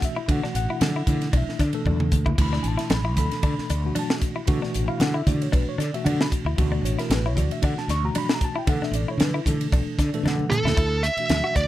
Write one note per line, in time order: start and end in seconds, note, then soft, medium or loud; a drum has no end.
0.00 0.17 B2 medium
0.00 0.18 E3 medium
0.00 0.18 A3 medium
0.00 0.18 D4 medium
0.00 0.18 F#4 medium
0.00 kick medium
0.00 hi-hat pedal medium
0.00 ride medium
0.05 0.29 E5 medium
0.16 0.27 E4 medium
0.28 0.94 B2 medium
0.28 0.39 D3 loud
0.28 0.94 E3 medium
0.28 0.94 A3 medium
0.28 0.95 D4 medium
0.28 0.95 F#4 medium
0.28 0.55 F#5 medium
0.28 kick loud
0.28 ride medium
0.42 0.66 D4 medium
0.42 muted fretless electric bass stroke soft
0.42 snare soft
0.55 0.66 A1 medium
0.55 1.30 F#5 medium
0.55 hi-hat pedal medium
0.55 ride medium
0.70 0.92 E4 medium
0.81 1.01 D3 medium
0.81 snare loud
0.81 ride medium
0.81 high conga medium
0.96 1.18 E4 medium
1.07 1.61 B2 medium
1.07 1.27 D3 medium
1.07 1.61 E3 medium
1.07 1.61 A3 medium
1.07 1.62 D4 medium
1.07 1.62 E4 medium
1.07 kick medium
1.07 hi-hat pedal medium
1.07 ride medium
1.07 high conga medium
1.07 low conga medium
1.21 snare soft
1.21 ride medium
1.33 1.44 B1 medium
1.33 1.56 D4 medium
1.33 kick medium
1.33 ride medium
1.33 muted conga soft
1.33 high conga medium
1.37 1.61 E5 medium
1.47 muted fretless electric bass stroke soft
1.47 snare soft
1.59 1.70 D3 medium
1.59 1.83 D4 medium
1.59 kick medium
1.59 snare soft
1.59 hi-hat pedal medium
1.59 ride medium
1.59 muted conga soft
1.73 2.27 B2 medium
1.73 2.27 E3 medium
1.73 2.28 A3 medium
1.73 2.28 D4 medium
1.73 2.28 A4 medium
1.73 ride medium
1.85 2.09 E2 medium
1.85 2.09 D4 medium
1.85 kick medium
1.85 muted conga soft
1.85 high conga medium
1.85 low conga medium
2.00 mid tom medium
2.00 high conga soft
2.12 2.36 D2 medium
2.12 kick medium
2.12 hi-hat pedal medium
2.12 low conga medium
2.26 2.36 E4 medium
2.26 kick medium
2.26 low conga medium
2.38 2.58 D2 medium
2.38 3.04 B2 medium
2.38 3.04 E3 medium
2.38 3.04 A3 medium
2.38 3.05 D4 medium
2.38 3.05 E4 medium
2.38 2.66 B5 medium
2.38 kick loud
2.38 crash medium
2.38 ride medium
2.53 2.75 D4 medium
2.53 snare soft
2.63 2.75 A1 medium
2.63 2.66 G#5 medium
2.63 hi-hat pedal medium
2.63 ride medium
2.68 2.92 A5 medium
2.78 3.01 E4 medium
2.78 snare soft
2.78 ride medium
2.90 3.16 A1 medium
2.90 snare loud
2.90 ride medium
2.90 high conga medium
2.94 3.17 B5 medium
3.05 3.27 E4 medium
3.16 3.27 D2 medium
3.16 3.71 B2 medium
3.16 3.71 E3 medium
3.16 3.72 A3 medium
3.16 3.72 D4 medium
3.16 3.72 A4 medium
3.16 3.92 B5 medium
3.16 kick medium
3.16 hi-hat pedal medium
3.16 ride medium
3.16 high conga medium
3.31 snare soft
3.31 ride medium
3.43 3.54 D3 medium
3.43 3.66 D4 medium
3.43 kick medium
3.43 ride medium
3.58 muted fretless electric bass stroke soft
3.58 snare soft
3.69 3.90 D2 loud
3.69 3.92 D4 medium
3.69 hi-hat pedal medium
3.69 ride medium
3.69 muted conga soft
3.84 4.38 B2 medium
3.84 4.38 E3 medium
3.84 4.38 A3 medium
3.84 4.38 D4 medium
3.84 4.39 F#4 medium
3.95 4.18 D4 medium
3.95 4.14 A5 medium
3.95 ride medium
3.95 muted conga soft
3.95 high conga medium
4.10 snare loud
4.21 kick medium
4.21 hi-hat pedal medium
4.21 ride medium
4.36 4.46 E4 medium
4.46 5.13 B2 loud
4.46 4.59 D3 loud
4.46 5.13 E3 medium
4.46 5.14 A3 medium
4.46 5.14 D4 medium
4.46 5.14 F#4 loud
4.46 kick loud
4.46 ride medium
4.46 muted conga soft
4.62 4.85 D4 medium
4.62 muted fretless electric bass stroke soft
4.62 snare soft
4.74 4.86 A1 medium
4.74 hi-hat pedal medium
4.74 ride medium
4.88 5.11 E4 medium
4.88 5.01 F5 medium
4.88 muted fretless electric bass stroke soft
5.00 5.22 D3 medium
5.00 5.15 F#5 medium
5.00 snare loud
5.00 ride medium
5.00 high conga medium
5.14 5.37 E4 medium
5.14 5.27 E5 medium
5.26 5.81 B2 medium
5.26 5.47 D3 medium
5.26 5.81 E3 medium
5.26 5.81 A3 medium
5.26 5.81 D4 medium
5.26 5.82 F#4 medium
5.26 5.41 D5 medium
5.26 kick medium
5.26 hi-hat pedal medium
5.26 ride medium
5.26 high conga medium
5.26 low conga medium
5.42 5.54 C#5 medium
5.42 ride medium
5.52 5.64 B1 medium
5.52 5.75 D4 medium
5.52 5.67 B4 medium
5.52 kick medium
5.52 ride medium
5.52 muted conga soft
5.52 high conga medium
5.69 5.80 C#5 medium
5.78 5.90 D3 medium
5.78 6.01 D4 medium
5.78 5.93 D5 loud
5.78 snare soft
5.78 hi-hat pedal medium
5.78 ride medium
5.78 muted conga soft
5.93 6.47 B2 medium
5.93 6.48 E3 medium
5.93 6.48 A3 medium
5.93 6.48 D4 medium
5.93 6.48 F#4 medium
5.93 6.06 E5 medium
5.93 ride soft
6.05 6.25 D3 medium
6.05 6.29 D4 medium
6.05 6.19 F#5 medium
6.05 ride medium
6.05 muted conga soft
6.05 high conga medium
6.05 low conga medium
6.21 6.28 B5 medium
6.21 snare loud
6.32 kick medium
6.32 hi-hat pedal medium
6.32 ride medium
6.45 6.55 D2 medium
6.45 6.57 E4 medium
6.57 6.78 D2 medium
6.57 7.23 B2 loud
6.57 7.24 E3 medium
6.57 7.24 A3 medium
6.57 7.24 D4 medium
6.57 7.24 F#4 medium
6.57 kick loud
6.57 ride medium
6.57 muted conga soft
6.72 6.94 D4 medium
6.83 6.94 A1 medium
6.83 6.99 C#5 medium
6.83 hi-hat pedal medium
6.83 ride medium
6.99 7.21 E4 medium
6.99 7.11 A#4 medium
6.99 snare soft
6.99 ride medium
7.10 7.37 A1 medium
7.10 snare loud
7.10 ride medium
7.10 high conga medium
7.14 7.26 B4 medium
7.26 7.48 E4 medium
7.26 7.38 C#5 medium
7.35 7.48 D2 medium
7.35 7.90 B2 medium
7.35 7.90 E3 medium
7.35 7.90 A3 medium
7.35 7.90 D4 medium
7.35 7.91 F#4 medium
7.35 7.52 D5 medium
7.35 kick medium
7.35 hi-hat pedal medium
7.35 ride medium
7.35 high conga medium
7.51 7.63 E5 medium
7.51 ride medium
7.62 7.73 D3 medium
7.62 7.86 D4 medium
7.62 7.78 F#5 medium
7.62 kick medium
7.62 ride medium
7.62 muted conga soft
7.76 7.90 A5 medium
7.76 muted fretless electric bass stroke soft
7.76 snare soft
7.88 8.08 D2 loud
7.88 8.12 D4 medium
7.88 8.04 C#6 loud
7.88 snare soft
7.88 hi-hat pedal medium
7.88 ride medium
7.88 muted conga soft
8.03 8.57 B2 medium
8.03 8.57 E3 medium
8.03 8.57 A3 medium
8.03 8.57 D4 medium
8.03 8.58 F#4 medium
8.03 8.16 A#5 medium
8.15 8.38 D4 medium
8.15 8.31 B5 loud
8.15 ride medium
8.15 muted conga soft
8.15 high conga medium
8.29 snare loud
8.34 8.44 A#5 medium
8.41 8.57 A5 medium
8.41 kick medium
8.41 hi-hat pedal medium
8.41 ride medium
8.56 8.66 E4 medium
8.56 8.69 G5 medium
8.67 9.33 B2 medium
8.67 8.78 D3 loud
8.67 9.33 E3 medium
8.67 9.33 A3 medium
8.67 9.33 D4 medium
8.67 9.34 A4 medium
8.67 8.83 F#5 medium
8.67 kick loud
8.67 ride medium
8.81 9.04 D4 medium
8.81 8.95 E5 medium
8.81 muted fretless electric bass stroke soft
8.81 snare soft
8.91 9.03 A1 loud
8.91 9.08 D5 medium
8.91 hi-hat pedal medium
8.91 ride medium
9.08 9.31 E4 medium
9.08 9.21 C#5 medium
9.18 9.38 D3 medium
9.18 snare loud
9.18 ride medium
9.18 high conga medium
9.23 9.38 B4 medium
9.34 9.57 E4 medium
9.46 10.00 B2 medium
9.46 9.66 D3 medium
9.46 10.00 E3 medium
9.46 10.01 A3 medium
9.46 10.01 D4 medium
9.46 10.01 A4 medium
9.46 kick medium
9.46 hi-hat pedal medium
9.46 ride medium
9.46 high conga medium
9.61 ride medium
9.72 9.83 B1 medium
9.72 9.95 D4 medium
9.72 kick medium
9.72 ride medium
9.72 muted conga soft
9.72 high conga medium
9.98 10.09 D3 loud
9.98 10.21 D4 medium
9.98 10.24 D5 medium
9.98 kick medium
9.98 snare soft
9.98 hi-hat pedal medium
9.98 ride medium
9.98 muted conga soft
10.13 10.67 B2 medium
10.13 10.67 E3 medium
10.13 10.67 A3 medium
10.13 10.67 D4 medium
10.13 10.67 A4 medium
10.13 ride medium
10.23 10.44 D3 medium
10.23 10.48 D4 medium
10.23 snare medium
10.23 muted conga soft
10.23 high conga medium
10.23 low conga medium
10.28 10.51 F#5 medium
10.39 high conga medium
10.51 11.05 A4 loud
10.51 10.76 A5 medium
10.51 hi-hat pedal medium
10.51 mid tom medium
10.51 low conga medium
10.64 10.74 D2 medium
10.64 10.76 E4 medium
10.64 snare medium
10.64 low conga medium
10.77 11.08 D2 medium
10.77 10.99 E4 medium
10.77 kick loud
10.77 ride medium
11.03 11.56 E5 loud
11.03 hi-hat pedal medium
11.03 ride soft
11.17 11.68 B2 medium
11.17 11.68 E3 medium
11.17 11.68 A3 medium
11.17 11.68 D4 medium
11.17 11.68 F#4 medium
11.17 muted fretless electric bass stroke soft
11.17 ride medium
11.29 11.40 D2 loud
11.29 snare loud
11.29 ride medium
11.29 muted conga soft
11.29 high conga medium
11.44 11.66 F#4 medium
11.56 11.66 D2 medium
11.56 11.68 D5 medium
11.56 kick medium
11.56 hi-hat pedal medium
11.56 ride medium